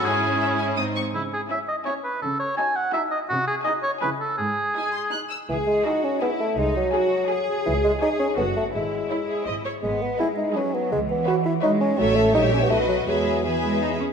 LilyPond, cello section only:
\new Staff \with { instrumentName = "Cello section" } { \clef bass \time 3/4 \key cis \minor \tempo 4 = 166 gis,2 gis,8 r8 | cis4 r2 | cis4 r2 | bis,4 r4 cis4 |
gis,4 r2 | gis'4 fis'4 e'4 | dis'4 fis'4 gis'4~ | gis'4 gis'4 fis'4 |
e'2~ e'8 r8 | \key e \major b4 gis4 fis4 | e2 gis4 | a4 g4 fis4 |
gis4 e8 gis8 dis'8 cis'8 | }